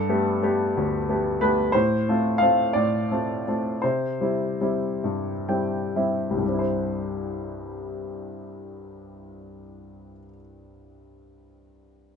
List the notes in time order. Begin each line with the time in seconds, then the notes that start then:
Already playing: G2 A4
0.09 A3 B3 G4
0.43 A3 B3 G4
0.77 D2
1.09 A3 B3 G4
1.41 A3 B3 G4 B4
1.72 A2 C5
2.09 A3 C4 F4
2.38 A3 F5
2.42 C4 F4
2.73 A2 D5
3.11 A3 C4 F4
3.48 A3 C4 F4
3.82 C3 C5
4.21 G3 C4 E4
4.61 G3 C4 E4
5.04 G2
5.49 G3 C4 E4 G5
5.96 G3 C4 E4 E5
6.31 C2
6.37 G2
6.43 G3
6.48 C4
6.53 E4
6.59 C5